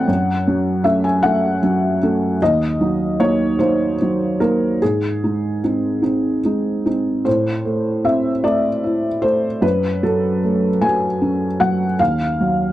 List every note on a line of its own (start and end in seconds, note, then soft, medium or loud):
0.00 0.10 A3 soft
0.00 0.10 D5 medium
0.00 0.85 F#5 medium
0.00 0.10 G5 medium
0.00 0.10 A5 medium
0.07 2.37 F#2 medium
0.47 0.82 F#3 soft
0.47 0.82 C#4 soft
0.84 1.19 A3 soft
0.84 1.20 C#4 soft
0.84 1.04 E5 medium
1.04 1.24 G#5 medium
1.23 1.58 A3 soft
1.23 1.59 C#4 soft
1.23 2.40 F#5 medium
1.63 1.98 F#3 soft
1.63 1.98 C#4 soft
2.03 2.37 A3 soft
2.03 2.37 C#4 soft
2.42 4.78 D#2 soft
2.42 3.20 D#5 medium
2.80 3.15 F#3 soft
2.80 3.16 D#4 soft
3.20 3.55 A#3 soft
3.20 3.56 D#4 soft
3.20 3.59 C#5 medium
3.59 3.95 A#3 soft
3.59 3.96 D#4 soft
3.59 4.40 C5 medium
4.02 4.37 F#3 soft
4.02 4.37 D#4 soft
4.40 4.78 A#3 soft
4.40 4.78 D#4 soft
4.40 4.81 A#4 medium
4.82 7.23 G#2 soft
4.82 6.86 G#4 medium
5.24 5.60 G#3 soft
5.24 5.59 D#4 soft
5.64 6.00 C4 soft
5.64 6.00 D#4 soft
6.02 6.40 C4 soft
6.02 6.40 D#4 soft
6.45 6.82 G#3 soft
6.45 6.82 D#4 soft
6.86 7.22 C4 soft
6.86 7.22 D#4 soft
7.25 9.58 A2 soft
7.25 8.05 C5 medium
7.65 8.29 A3 soft
8.05 8.68 C4 soft
8.05 8.44 E5 medium
8.44 9.07 A3 soft
8.44 9.23 D5 medium
8.84 9.47 E4 soft
9.22 9.62 A3 soft
9.22 9.62 C5 medium
9.61 11.95 F#2 soft
9.61 10.02 B4 medium
10.03 10.67 F#3 soft
10.03 10.83 A4 medium
10.43 11.06 A3 soft
10.81 11.45 F#3 soft
10.81 11.60 G#5 medium
11.22 11.84 C#4 soft
11.60 11.99 F#3 soft
11.60 11.99 F#5 medium
11.99 12.72 D#2 soft
11.99 12.72 F5 medium
12.40 12.72 F#3 soft